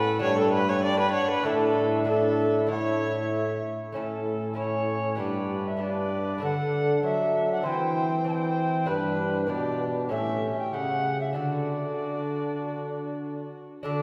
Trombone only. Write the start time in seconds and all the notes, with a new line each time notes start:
Already playing: A2
0.22 G2
1.46 A2
3.95 A2
5.19 G2
6.43 D3
7.04 F#3
7.66 E3
8.88 G2
9.49 B2
10.11 A2
10.72 C#3
11.35 D3
13.85 D3